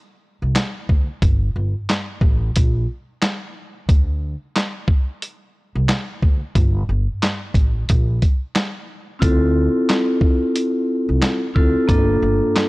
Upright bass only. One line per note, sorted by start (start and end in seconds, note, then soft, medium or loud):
0.42 0.53 C2 medium
0.89 1.05 D2 medium
1.22 1.50 G1 loud
1.56 1.72 G1 loud
2.21 2.49 A1 medium
2.57 2.84 A#1 loud
3.89 4.33 D2 loud
5.75 5.86 C2 medium
6.23 6.39 D2 medium
6.56 6.83 G1 loud
6.89 7.05 G1 medium
7.55 7.83 A1 medium
7.90 8.17 A#1 loud
9.22 9.66 D2 loud
11.09 11.20 C2 medium
11.56 11.72 D2 medium
11.89 12.17 G1 loud
12.22 12.39 G1 medium